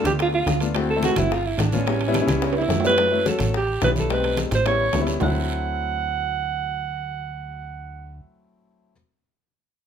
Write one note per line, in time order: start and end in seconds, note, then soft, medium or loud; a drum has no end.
0.00 0.37 A3 medium
0.00 0.37 B3 medium
0.00 0.37 D4 medium
0.00 0.37 F4 medium
0.04 0.43 D2 medium
0.04 0.12 G4 medium
0.04 high bongo soft
0.04 high conga medium
0.04 high timbale medium
0.04 short guiro medium
0.19 0.28 F4 medium
0.19 high bongo medium
0.19 high conga soft
0.19 high timbale medium
0.19 long guiro medium
0.33 0.60 F4 medium
0.33 high bongo soft
0.33 high conga soft
0.46 1.11 D2 medium
0.46 high bongo medium
0.46 low bongo medium
0.46 high conga medium
0.46 high timbale medium
0.46 low timbale medium
0.46 short guiro medium
0.60 0.71 A3 medium
0.60 0.71 B3 medium
0.60 0.71 D4 medium
0.60 0.71 F4 medium
0.60 high bongo soft
0.60 high conga soft
0.60 high timbale medium
0.60 short guiro medium
0.75 0.89 A3 medium
0.75 0.89 C4 medium
0.75 0.90 E4 medium
0.75 0.90 F#4 loud
0.75 high bongo medium
0.75 high timbale loud
0.75 long guiro medium
0.89 1.02 A4 loud
0.89 high conga soft
0.96 1.06 A3 medium
0.96 1.06 C4 medium
0.96 1.06 E4 medium
0.96 1.06 A4 loud
1.03 1.21 F#4 loud
1.03 high bongo medium
1.03 high conga medium
1.03 high timbale medium
1.03 short guiro medium
1.09 1.30 A3 medium
1.09 1.30 C4 medium
1.09 1.31 E4 medium
1.09 1.31 F#4 medium
1.16 1.56 G1 medium
1.16 1.35 E4 loud
1.16 high conga medium
1.16 low conga medium
1.16 high timbale medium
1.16 short guiro medium
1.31 1.48 F4 medium
1.31 high bongo medium
1.31 long guiro medium
1.45 1.62 E4 medium
1.45 high conga soft
1.58 2.22 A1 medium
1.58 1.76 D4 medium
1.58 high bongo medium
1.58 low bongo medium
1.58 high conga medium
1.58 high timbale medium
1.58 low timbale medium
1.58 short guiro medium
1.72 1.82 A3 medium
1.72 1.83 B3 medium
1.72 2.57 C#4 medium
1.72 1.83 D4 medium
1.72 1.83 F4 medium
1.72 high conga medium
1.72 short guiro medium
1.86 2.01 G3 medium
1.86 2.01 B3 medium
1.86 2.02 C#4 medium
1.86 2.01 E4 medium
1.86 high bongo medium
1.86 high conga soft
1.86 high timbale medium
1.86 long guiro medium
2.01 high conga soft
2.01 high timbale medium
2.08 2.17 G3 loud
2.08 2.17 B3 medium
2.08 2.18 C#4 medium
2.08 2.17 E4 loud
2.14 high bongo medium
2.14 high conga medium
2.14 high timbale medium
2.14 short guiro medium
2.21 2.60 G3 medium
2.21 2.60 B3 medium
2.21 2.61 C#4 medium
2.21 2.60 E4 loud
2.27 2.67 C#2 medium
2.27 high conga loud
2.27 high timbale medium
2.27 short guiro medium
2.42 high bongo medium
2.42 high timbale medium
2.42 long guiro medium
2.53 high bongo soft
2.53 high timbale medium
2.57 2.83 E4 medium
2.57 high conga soft
2.62 high timbale medium
2.68 3.34 F#2 medium
2.68 high bongo medium
2.68 low bongo medium
2.68 high conga medium
2.68 low timbale medium
2.68 short guiro medium
2.80 low timbale loud
2.84 2.94 G3 medium
2.84 2.94 B3 medium
2.84 2.94 C#4 medium
2.84 2.94 E4 loud
2.84 3.24 B4 loud
2.84 high bongo soft
2.84 high conga soft
2.84 short guiro medium
2.89 low timbale medium
2.98 3.08 F#3 medium
2.98 3.08 A3 medium
2.98 3.08 C#4 medium
2.98 3.08 E4 medium
2.98 high bongo medium
2.98 high conga soft
2.98 high timbale loud
2.98 long guiro medium
3.11 3.21 F#3 medium
3.11 3.21 A3 medium
3.11 3.21 C#4 medium
3.11 3.22 E4 medium
3.11 high conga soft
3.25 3.54 F#3 medium
3.25 3.54 A3 medium
3.25 3.54 C#4 medium
3.25 3.54 F#4 medium
3.25 3.53 A4 medium
3.25 high bongo medium
3.25 high conga medium
3.25 high timbale medium
3.25 short guiro medium
3.39 3.79 A1 medium
3.39 high conga medium
3.39 high timbale medium
3.39 short guiro medium
3.54 3.82 G4 loud
3.54 high bongo medium
3.54 high conga soft
3.54 long guiro medium
3.68 high conga soft
3.82 4.47 B1 medium
3.82 4.08 G3 medium
3.82 4.10 B3 medium
3.82 4.10 C#4 medium
3.82 4.10 E4 medium
3.82 3.90 B4 medium
3.82 high bongo medium
3.82 low bongo medium
3.82 high conga medium
3.82 high timbale medium
3.82 low timbale medium
3.82 short guiro medium
3.96 4.14 A4 medium
3.96 high conga medium
3.96 short guiro medium
4.09 4.54 G3 medium
4.09 4.54 A3 medium
4.09 4.55 C4 medium
4.09 4.55 D#4 medium
4.09 4.39 B4 medium
4.09 high bongo medium
4.09 high conga soft
4.09 high timbale medium
4.09 long guiro medium
4.24 high conga soft
4.24 high timbale medium
4.37 high bongo medium
4.37 high conga medium
4.37 high timbale medium
4.37 short guiro medium
4.51 4.90 A1 loud
4.51 4.66 C5 loud
4.51 high bongo soft
4.51 high conga medium
4.51 high timbale medium
4.51 short guiro medium
4.65 4.85 G3 medium
4.65 4.85 B3 medium
4.65 4.85 C#4 medium
4.65 4.85 E4 medium
4.65 5.06 C#5 loud
4.65 high bongo medium
4.65 high conga soft
4.65 high timbale medium
4.80 high bongo soft
4.80 high conga soft
4.93 5.18 D2 medium
4.93 4.98 G3 medium
4.93 4.98 B3 medium
4.93 4.98 C#4 medium
4.93 4.99 E4 medium
4.93 high bongo medium
4.93 low bongo medium
4.93 high conga medium
4.93 high timbale medium
4.93 low timbale medium
4.93 short guiro medium
5.01 5.16 G3 medium
5.01 5.16 B3 medium
5.01 5.16 C#4 medium
5.01 5.16 E4 loud
5.07 high bongo soft
5.07 high conga soft
5.07 high timbale medium
5.07 short guiro medium
5.20 8.21 D2 loud
5.20 8.90 F#3 medium
5.20 8.91 A3 medium
5.20 8.92 C4 medium
5.20 8.92 E4 medium
5.20 8.22 F#5 medium
5.20 low bongo medium
5.20 low conga medium
5.20 low timbale loud
5.20 long guiro medium